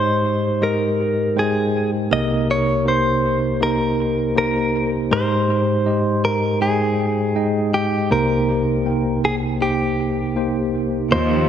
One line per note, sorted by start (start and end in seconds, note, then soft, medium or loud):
0.00 2.07 G#2 medium
0.00 0.61 G#3 medium
0.00 0.61 D#4 medium
0.00 0.61 G4 medium
0.00 0.58 C5 medium
0.00 0.64 C5 medium
0.00 0.62 D#5 medium
0.61 1.32 G#3 medium
0.61 1.33 D#4 soft
0.61 1.33 G4 medium
0.61 1.39 A#4 medium
0.61 1.33 D#5 medium
1.36 2.07 G#3 medium
1.36 2.07 D#4 medium
1.36 1.90 G#4 medium
1.36 2.08 C5 medium
1.36 2.08 G5 medium
2.11 5.07 C2 medium
2.11 5.07 C3 medium
2.11 2.82 A#3 medium
2.11 2.82 D#4 medium
2.11 2.83 G4 medium
2.11 2.83 A#4 medium
2.11 2.47 D#5 medium
2.51 2.85 C#5 medium
2.85 3.57 A#3 medium
2.85 3.57 D#4 medium
2.85 3.57 G4 soft
2.85 3.57 C5 medium
2.85 3.62 C5 medium
3.60 4.32 A#3 medium
3.60 4.32 D#4 medium
3.60 4.32 G4 medium
3.60 4.37 A#4 medium
3.60 4.32 D#5 medium
4.35 5.07 A#3 medium
4.35 5.07 D#4 medium
4.35 5.07 G4 medium
4.35 4.90 A#4 medium
4.35 5.08 C5 medium
5.11 8.07 G#2 medium
5.11 5.82 G#3 medium
5.11 5.82 D#4 medium
5.11 5.82 G4 medium
5.11 5.83 C5 medium
5.11 6.24 C5 medium
5.86 6.57 G#3 medium
5.86 6.57 D#4 soft
5.86 6.57 G4 medium
5.86 6.58 D#5 medium
6.25 6.61 A#4 medium
6.61 7.32 G#3 medium
6.61 7.32 D#4 soft
6.61 7.70 G#4 medium
6.61 7.33 C5 medium
6.61 7.33 G5 medium
7.35 8.07 G#3 medium
7.35 8.07 D#4 medium
7.35 8.08 D#5 medium
7.35 8.07 G5 medium
7.74 8.12 G4 medium
8.10 11.07 C2 medium
8.10 11.07 C3 medium
8.10 8.82 A#3 medium
8.10 8.82 D#4 medium
8.10 8.82 G4 medium
8.10 9.20 A#4 medium
8.10 8.82 C5 medium
8.85 9.57 A#3 medium
8.85 9.57 D#4 medium
8.85 9.57 A#4 medium
8.85 9.57 G5 medium
9.25 9.35 G#4 medium
9.61 10.32 A#3 medium
9.61 10.32 D#4 medium
9.61 10.32 G4 medium
9.61 10.70 G4 medium
9.61 10.33 C5 medium
10.36 11.07 A#3 medium
10.36 11.07 D#4 medium
10.36 11.07 G4 medium
10.36 11.08 C5 medium
11.11 11.49 D#2 medium
11.11 11.49 D#3 medium
11.11 11.49 F3 medium
11.11 11.49 A#3 medium
11.11 11.49 D#4 medium
11.11 11.49 F4 medium
11.11 11.49 C5 medium
11.11 11.49 D#5 medium